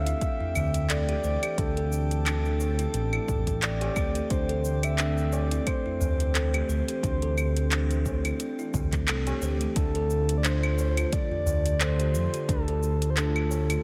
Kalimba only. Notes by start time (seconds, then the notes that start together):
0.07 E4
0.41 E4
0.56 A3
0.90 A4
1.09 G4
1.24 C5
1.43 G4
1.58 D4
1.77 A4
2.26 D4
2.79 E4
3.13 E4
3.28 A3
3.62 A4
3.81 G4
3.97 C5
4.15 G4
4.30 D4
4.49 A4
4.99 D4
5.52 E4
5.86 E4
6.00 A3
6.34 A4
6.54 G4
6.69 C5
6.89 G4
7.04 D4
7.22 A4
7.71 D4
8.24 E4
8.59 E4
8.74 A3
9.09 A4
9.27 G4
9.43 C5
9.62 G4
9.77 D4
9.95 A4
10.45 D4
10.97 F4
11.32 F4
11.46 A3
11.80 A4
11.99 G4
12.15 C5
12.34 G4
12.49 D4
12.68 A4
13.17 D4
13.70 F4